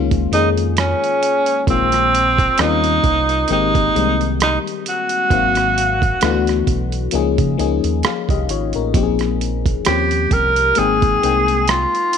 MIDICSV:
0, 0, Header, 1, 5, 480
1, 0, Start_track
1, 0, Key_signature, -4, "major"
1, 0, Tempo, 909091
1, 882, Time_signature, 4, 2, 24, 8
1, 6429, End_track
2, 0, Start_track
2, 0, Title_t, "Tenor saxophone"
2, 0, Program_c, 0, 66
2, 175, Note_on_c, 0, 63, 84
2, 260, Note_off_c, 0, 63, 0
2, 418, Note_on_c, 0, 61, 81
2, 869, Note_off_c, 0, 61, 0
2, 899, Note_on_c, 0, 60, 88
2, 1380, Note_on_c, 0, 63, 91
2, 1388, Note_off_c, 0, 60, 0
2, 1851, Note_off_c, 0, 63, 0
2, 1861, Note_on_c, 0, 63, 91
2, 2310, Note_off_c, 0, 63, 0
2, 2338, Note_on_c, 0, 63, 87
2, 2423, Note_off_c, 0, 63, 0
2, 2581, Note_on_c, 0, 66, 86
2, 3510, Note_off_c, 0, 66, 0
2, 5209, Note_on_c, 0, 67, 86
2, 5455, Note_on_c, 0, 70, 89
2, 5463, Note_off_c, 0, 67, 0
2, 5695, Note_on_c, 0, 68, 91
2, 5703, Note_off_c, 0, 70, 0
2, 6168, Note_off_c, 0, 68, 0
2, 6173, Note_on_c, 0, 65, 80
2, 6429, Note_off_c, 0, 65, 0
2, 6429, End_track
3, 0, Start_track
3, 0, Title_t, "FM electric piano"
3, 0, Program_c, 1, 5
3, 0, Note_on_c, 1, 51, 83
3, 0, Note_on_c, 1, 56, 76
3, 0, Note_on_c, 1, 58, 70
3, 0, Note_on_c, 1, 61, 70
3, 0, Note_on_c, 1, 65, 83
3, 16, Control_c, 1, 64, 127
3, 140, Note_off_c, 1, 51, 0
3, 142, Note_off_c, 1, 56, 0
3, 143, Note_off_c, 1, 58, 0
3, 146, Note_off_c, 1, 61, 0
3, 148, Note_off_c, 1, 65, 0
3, 167, Note_on_c, 1, 51, 69
3, 170, Note_on_c, 1, 56, 61
3, 174, Note_on_c, 1, 58, 64
3, 179, Note_on_c, 1, 61, 57
3, 182, Note_on_c, 1, 68, 76
3, 814, Note_off_c, 1, 51, 0
3, 816, Note_off_c, 1, 56, 0
3, 818, Note_off_c, 1, 58, 0
3, 820, Note_off_c, 1, 61, 0
3, 822, Note_off_c, 1, 68, 0
3, 884, Note_on_c, 1, 51, 59
3, 887, Note_on_c, 1, 56, 60
3, 888, Control_c, 1, 64, 0
3, 891, Note_on_c, 1, 58, 55
3, 896, Note_on_c, 1, 60, 55
3, 898, Note_on_c, 1, 65, 72
3, 994, Control_c, 1, 64, 127
3, 1363, Note_off_c, 1, 51, 0
3, 1364, Note_on_c, 1, 61, 71
3, 1365, Note_off_c, 1, 56, 0
3, 1365, Note_off_c, 1, 58, 0
3, 1367, Note_on_c, 1, 55, 68
3, 1369, Note_off_c, 1, 60, 0
3, 1369, Control_c, 1, 64, 0
3, 1370, Note_off_c, 1, 65, 0
3, 1371, Note_on_c, 1, 58, 66
3, 1375, Note_on_c, 1, 60, 66
3, 1379, Note_on_c, 1, 65, 74
3, 1449, Control_c, 1, 64, 127
3, 1796, Note_off_c, 1, 61, 0
3, 1798, Note_off_c, 1, 55, 0
3, 1800, Note_off_c, 1, 58, 0
3, 1802, Note_off_c, 1, 60, 0
3, 1804, Note_off_c, 1, 65, 0
3, 1843, Note_on_c, 1, 51, 64
3, 1846, Note_on_c, 1, 56, 64
3, 1848, Control_c, 1, 64, 0
3, 1851, Note_on_c, 1, 58, 63
3, 1855, Note_on_c, 1, 60, 64
3, 1859, Note_on_c, 1, 67, 77
3, 1946, Control_c, 1, 64, 127
3, 2059, Note_off_c, 1, 51, 0
3, 2061, Note_off_c, 1, 56, 0
3, 2063, Note_off_c, 1, 58, 0
3, 2065, Note_off_c, 1, 60, 0
3, 2067, Note_off_c, 1, 67, 0
3, 2083, Note_on_c, 1, 51, 65
3, 2086, Note_on_c, 1, 56, 64
3, 2089, Note_on_c, 1, 58, 60
3, 2093, Note_on_c, 1, 60, 60
3, 2099, Note_on_c, 1, 55, 70
3, 2733, Note_off_c, 1, 51, 0
3, 2734, Note_off_c, 1, 56, 0
3, 2735, Note_off_c, 1, 58, 0
3, 2737, Note_off_c, 1, 60, 0
3, 2740, Note_off_c, 1, 55, 0
3, 2803, Note_on_c, 1, 51, 61
3, 2806, Note_on_c, 1, 54, 57
3, 2809, Control_c, 1, 64, 0
3, 2809, Note_on_c, 1, 58, 62
3, 2813, Note_on_c, 1, 60, 61
3, 2817, Note_on_c, 1, 77, 66
3, 2908, Control_c, 1, 64, 127
3, 3281, Note_on_c, 1, 52, 79
3, 3282, Note_off_c, 1, 51, 0
3, 3283, Note_on_c, 1, 57, 77
3, 3284, Note_off_c, 1, 54, 0
3, 3285, Note_off_c, 1, 58, 0
3, 3288, Note_off_c, 1, 60, 0
3, 3288, Control_c, 1, 64, 0
3, 3288, Note_on_c, 1, 59, 69
3, 3289, Note_off_c, 1, 77, 0
3, 3291, Note_on_c, 1, 62, 78
3, 3295, Note_on_c, 1, 65, 70
3, 3327, Note_off_c, 1, 65, 0
3, 3329, Note_on_c, 1, 66, 92
3, 3392, Control_c, 1, 64, 127
3, 3715, Note_off_c, 1, 52, 0
3, 3716, Note_off_c, 1, 57, 0
3, 3718, Note_off_c, 1, 59, 0
3, 3720, Note_off_c, 1, 62, 0
3, 3739, Note_off_c, 1, 66, 0
3, 3761, Note_on_c, 1, 53, 85
3, 3764, Note_on_c, 1, 58, 72
3, 3768, Note_on_c, 1, 61, 69
3, 3769, Control_c, 1, 64, 0
3, 3771, Note_on_c, 1, 63, 73
3, 3776, Note_on_c, 1, 68, 88
3, 3852, Control_c, 1, 64, 127
3, 3978, Note_off_c, 1, 53, 0
3, 3979, Note_off_c, 1, 58, 0
3, 3982, Note_off_c, 1, 61, 0
3, 3983, Note_off_c, 1, 63, 0
3, 3986, Note_off_c, 1, 68, 0
3, 4000, Note_on_c, 1, 53, 74
3, 4004, Note_on_c, 1, 58, 70
3, 4009, Note_on_c, 1, 61, 67
3, 4011, Note_on_c, 1, 63, 72
3, 4016, Note_on_c, 1, 68, 87
3, 4245, Note_off_c, 1, 61, 0
3, 4246, Note_off_c, 1, 63, 0
3, 4247, Note_off_c, 1, 68, 0
3, 4251, Note_on_c, 1, 77, 55
3, 4254, Note_on_c, 1, 68, 46
3, 4374, Note_off_c, 1, 77, 0
3, 4376, Note_off_c, 1, 68, 0
3, 4384, Note_on_c, 1, 75, 56
3, 4386, Note_on_c, 1, 67, 51
3, 4481, Note_off_c, 1, 75, 0
3, 4482, Note_off_c, 1, 67, 0
3, 4491, Note_on_c, 1, 73, 61
3, 4493, Note_on_c, 1, 65, 51
3, 4614, Note_off_c, 1, 73, 0
3, 4616, Note_off_c, 1, 65, 0
3, 4623, Note_on_c, 1, 70, 51
3, 4626, Note_on_c, 1, 61, 47
3, 4651, Note_off_c, 1, 53, 0
3, 4653, Note_off_c, 1, 58, 0
3, 4720, Note_on_c, 1, 53, 76
3, 4725, Note_on_c, 1, 58, 69
3, 4728, Control_c, 1, 64, 0
3, 4728, Note_on_c, 1, 60, 71
3, 4732, Note_on_c, 1, 63, 68
3, 4735, Note_on_c, 1, 67, 67
3, 4767, Note_off_c, 1, 67, 0
3, 4768, Note_on_c, 1, 68, 77
3, 4820, Control_c, 1, 64, 127
3, 4848, Note_off_c, 1, 70, 0
3, 4849, Note_off_c, 1, 61, 0
3, 5195, Note_off_c, 1, 53, 0
3, 5199, Note_off_c, 1, 58, 0
3, 5202, Note_on_c, 1, 53, 68
3, 5203, Note_off_c, 1, 60, 0
3, 5205, Note_on_c, 1, 58, 62
3, 5207, Note_off_c, 1, 63, 0
3, 5208, Control_c, 1, 64, 0
3, 5209, Note_on_c, 1, 60, 62
3, 5212, Note_on_c, 1, 61, 61
3, 5218, Note_on_c, 1, 67, 76
3, 5225, Note_off_c, 1, 68, 0
3, 5292, Control_c, 1, 64, 127
3, 5635, Note_off_c, 1, 53, 0
3, 5637, Note_off_c, 1, 58, 0
3, 5639, Note_off_c, 1, 60, 0
3, 5640, Note_off_c, 1, 61, 0
3, 5643, Note_off_c, 1, 67, 0
3, 5682, Note_on_c, 1, 56, 68
3, 5685, Note_on_c, 1, 58, 63
3, 5689, Control_c, 1, 64, 0
3, 5689, Note_on_c, 1, 60, 66
3, 5694, Note_on_c, 1, 63, 65
3, 5697, Note_on_c, 1, 79, 77
3, 5782, Control_c, 1, 64, 127
3, 5899, Note_off_c, 1, 56, 0
3, 5900, Note_off_c, 1, 58, 0
3, 5902, Note_off_c, 1, 60, 0
3, 5904, Note_off_c, 1, 63, 0
3, 5906, Note_off_c, 1, 79, 0
3, 5925, Note_on_c, 1, 56, 63
3, 5929, Note_on_c, 1, 58, 59
3, 5932, Note_on_c, 1, 60, 61
3, 5936, Note_on_c, 1, 63, 54
3, 5939, Note_on_c, 1, 79, 71
3, 6429, Note_off_c, 1, 56, 0
3, 6429, Note_off_c, 1, 58, 0
3, 6429, Note_off_c, 1, 60, 0
3, 6429, Note_off_c, 1, 63, 0
3, 6429, Note_off_c, 1, 79, 0
3, 6429, End_track
4, 0, Start_track
4, 0, Title_t, "Fingered electric bass"
4, 0, Program_c, 2, 33
4, 0, Note_on_c, 2, 37, 92
4, 134, Note_off_c, 2, 37, 0
4, 167, Note_on_c, 2, 41, 82
4, 492, Note_off_c, 2, 41, 0
4, 887, Note_on_c, 2, 34, 93
4, 1304, Note_off_c, 2, 34, 0
4, 1368, Note_on_c, 2, 39, 75
4, 1575, Note_off_c, 2, 39, 0
4, 1607, Note_on_c, 2, 36, 75
4, 1814, Note_off_c, 2, 36, 0
4, 1848, Note_on_c, 2, 32, 86
4, 2055, Note_off_c, 2, 32, 0
4, 2086, Note_on_c, 2, 36, 81
4, 2411, Note_off_c, 2, 36, 0
4, 2805, Note_on_c, 2, 32, 97
4, 3223, Note_off_c, 2, 32, 0
4, 3287, Note_on_c, 2, 38, 77
4, 3494, Note_off_c, 2, 38, 0
4, 3525, Note_on_c, 2, 35, 77
4, 3733, Note_off_c, 2, 35, 0
4, 3766, Note_on_c, 2, 37, 84
4, 3882, Note_off_c, 2, 37, 0
4, 3902, Note_on_c, 2, 49, 75
4, 3992, Note_off_c, 2, 49, 0
4, 4007, Note_on_c, 2, 37, 81
4, 4122, Note_off_c, 2, 37, 0
4, 4139, Note_on_c, 2, 39, 76
4, 4230, Note_off_c, 2, 39, 0
4, 4380, Note_on_c, 2, 36, 68
4, 4471, Note_off_c, 2, 36, 0
4, 4487, Note_on_c, 2, 32, 77
4, 4602, Note_off_c, 2, 32, 0
4, 4623, Note_on_c, 2, 33, 65
4, 4712, Note_off_c, 2, 33, 0
4, 4724, Note_on_c, 2, 34, 91
4, 5143, Note_off_c, 2, 34, 0
4, 5212, Note_on_c, 2, 39, 72
4, 5417, Note_off_c, 2, 39, 0
4, 5446, Note_on_c, 2, 36, 71
4, 5654, Note_off_c, 2, 36, 0
4, 5692, Note_on_c, 2, 32, 90
4, 5897, Note_off_c, 2, 32, 0
4, 5931, Note_on_c, 2, 36, 73
4, 6254, Note_off_c, 2, 36, 0
4, 6429, End_track
5, 0, Start_track
5, 0, Title_t, "Drums"
5, 60, Note_on_c, 9, 36, 81
5, 60, Note_on_c, 9, 42, 39
5, 113, Note_off_c, 9, 36, 0
5, 113, Note_off_c, 9, 42, 0
5, 173, Note_on_c, 9, 42, 65
5, 226, Note_off_c, 9, 42, 0
5, 303, Note_on_c, 9, 42, 33
5, 356, Note_off_c, 9, 42, 0
5, 405, Note_on_c, 9, 42, 61
5, 413, Note_on_c, 9, 37, 93
5, 458, Note_off_c, 9, 42, 0
5, 466, Note_off_c, 9, 37, 0
5, 547, Note_on_c, 9, 42, 39
5, 600, Note_off_c, 9, 42, 0
5, 647, Note_on_c, 9, 42, 63
5, 700, Note_off_c, 9, 42, 0
5, 772, Note_on_c, 9, 42, 42
5, 825, Note_off_c, 9, 42, 0
5, 883, Note_on_c, 9, 36, 96
5, 885, Note_on_c, 9, 42, 68
5, 935, Note_off_c, 9, 36, 0
5, 938, Note_off_c, 9, 42, 0
5, 1014, Note_on_c, 9, 42, 46
5, 1024, Note_on_c, 9, 37, 31
5, 1067, Note_off_c, 9, 42, 0
5, 1077, Note_off_c, 9, 37, 0
5, 1133, Note_on_c, 9, 42, 62
5, 1186, Note_off_c, 9, 42, 0
5, 1259, Note_on_c, 9, 36, 92
5, 1263, Note_on_c, 9, 42, 41
5, 1312, Note_off_c, 9, 36, 0
5, 1316, Note_off_c, 9, 42, 0
5, 1360, Note_on_c, 9, 42, 80
5, 1369, Note_on_c, 9, 37, 105
5, 1413, Note_off_c, 9, 42, 0
5, 1422, Note_off_c, 9, 37, 0
5, 1498, Note_on_c, 9, 42, 38
5, 1551, Note_off_c, 9, 42, 0
5, 1604, Note_on_c, 9, 36, 71
5, 1604, Note_on_c, 9, 42, 56
5, 1656, Note_off_c, 9, 36, 0
5, 1657, Note_off_c, 9, 42, 0
5, 1738, Note_on_c, 9, 42, 41
5, 1791, Note_off_c, 9, 42, 0
5, 1836, Note_on_c, 9, 42, 74
5, 1889, Note_off_c, 9, 42, 0
5, 1980, Note_on_c, 9, 36, 79
5, 1981, Note_on_c, 9, 42, 40
5, 2033, Note_off_c, 9, 36, 0
5, 2034, Note_off_c, 9, 42, 0
5, 2092, Note_on_c, 9, 42, 61
5, 2145, Note_off_c, 9, 42, 0
5, 2222, Note_on_c, 9, 42, 33
5, 2275, Note_off_c, 9, 42, 0
5, 2326, Note_on_c, 9, 42, 64
5, 2333, Note_on_c, 9, 37, 94
5, 2378, Note_off_c, 9, 42, 0
5, 2386, Note_off_c, 9, 37, 0
5, 2468, Note_on_c, 9, 42, 35
5, 2521, Note_off_c, 9, 42, 0
5, 2566, Note_on_c, 9, 42, 62
5, 2619, Note_off_c, 9, 42, 0
5, 2690, Note_on_c, 9, 42, 44
5, 2742, Note_off_c, 9, 42, 0
5, 2801, Note_on_c, 9, 36, 91
5, 2803, Note_on_c, 9, 42, 65
5, 2854, Note_off_c, 9, 36, 0
5, 2856, Note_off_c, 9, 42, 0
5, 2932, Note_on_c, 9, 42, 50
5, 2942, Note_on_c, 9, 37, 33
5, 2985, Note_off_c, 9, 42, 0
5, 2995, Note_off_c, 9, 37, 0
5, 3051, Note_on_c, 9, 42, 60
5, 3103, Note_off_c, 9, 42, 0
5, 3178, Note_on_c, 9, 36, 79
5, 3182, Note_on_c, 9, 42, 43
5, 3231, Note_off_c, 9, 36, 0
5, 3235, Note_off_c, 9, 42, 0
5, 3279, Note_on_c, 9, 42, 74
5, 3287, Note_on_c, 9, 37, 102
5, 3332, Note_off_c, 9, 42, 0
5, 3340, Note_off_c, 9, 37, 0
5, 3418, Note_on_c, 9, 42, 36
5, 3428, Note_on_c, 9, 37, 30
5, 3471, Note_off_c, 9, 42, 0
5, 3481, Note_off_c, 9, 37, 0
5, 3523, Note_on_c, 9, 36, 71
5, 3524, Note_on_c, 9, 42, 56
5, 3575, Note_off_c, 9, 36, 0
5, 3576, Note_off_c, 9, 42, 0
5, 3655, Note_on_c, 9, 42, 42
5, 3708, Note_off_c, 9, 42, 0
5, 3755, Note_on_c, 9, 42, 71
5, 3808, Note_off_c, 9, 42, 0
5, 3898, Note_on_c, 9, 36, 81
5, 3898, Note_on_c, 9, 42, 38
5, 3951, Note_off_c, 9, 36, 0
5, 3951, Note_off_c, 9, 42, 0
5, 4010, Note_on_c, 9, 42, 61
5, 4063, Note_off_c, 9, 42, 0
5, 4139, Note_on_c, 9, 42, 37
5, 4192, Note_off_c, 9, 42, 0
5, 4241, Note_on_c, 9, 42, 58
5, 4248, Note_on_c, 9, 37, 104
5, 4293, Note_off_c, 9, 42, 0
5, 4301, Note_off_c, 9, 37, 0
5, 4376, Note_on_c, 9, 36, 76
5, 4383, Note_on_c, 9, 42, 37
5, 4429, Note_off_c, 9, 36, 0
5, 4436, Note_off_c, 9, 42, 0
5, 4484, Note_on_c, 9, 42, 57
5, 4537, Note_off_c, 9, 42, 0
5, 4609, Note_on_c, 9, 42, 39
5, 4662, Note_off_c, 9, 42, 0
5, 4721, Note_on_c, 9, 36, 99
5, 4723, Note_on_c, 9, 42, 62
5, 4774, Note_off_c, 9, 36, 0
5, 4775, Note_off_c, 9, 42, 0
5, 4852, Note_on_c, 9, 42, 47
5, 4862, Note_on_c, 9, 37, 32
5, 4905, Note_off_c, 9, 42, 0
5, 4915, Note_off_c, 9, 37, 0
5, 4970, Note_on_c, 9, 42, 55
5, 5023, Note_off_c, 9, 42, 0
5, 5099, Note_on_c, 9, 36, 82
5, 5101, Note_on_c, 9, 42, 44
5, 5151, Note_off_c, 9, 36, 0
5, 5154, Note_off_c, 9, 42, 0
5, 5200, Note_on_c, 9, 42, 82
5, 5209, Note_on_c, 9, 37, 99
5, 5253, Note_off_c, 9, 42, 0
5, 5261, Note_off_c, 9, 37, 0
5, 5338, Note_on_c, 9, 42, 39
5, 5391, Note_off_c, 9, 42, 0
5, 5444, Note_on_c, 9, 36, 73
5, 5444, Note_on_c, 9, 42, 58
5, 5496, Note_off_c, 9, 36, 0
5, 5497, Note_off_c, 9, 42, 0
5, 5577, Note_on_c, 9, 42, 45
5, 5630, Note_off_c, 9, 42, 0
5, 5677, Note_on_c, 9, 42, 70
5, 5730, Note_off_c, 9, 42, 0
5, 5820, Note_on_c, 9, 36, 77
5, 5820, Note_on_c, 9, 42, 39
5, 5872, Note_off_c, 9, 42, 0
5, 5873, Note_off_c, 9, 36, 0
5, 5931, Note_on_c, 9, 42, 60
5, 5984, Note_off_c, 9, 42, 0
5, 6063, Note_on_c, 9, 42, 34
5, 6115, Note_off_c, 9, 42, 0
5, 6165, Note_on_c, 9, 42, 63
5, 6172, Note_on_c, 9, 37, 103
5, 6217, Note_off_c, 9, 42, 0
5, 6225, Note_off_c, 9, 37, 0
5, 6308, Note_on_c, 9, 42, 36
5, 6360, Note_off_c, 9, 42, 0
5, 6405, Note_on_c, 9, 42, 65
5, 6429, Note_off_c, 9, 42, 0
5, 6429, End_track
0, 0, End_of_file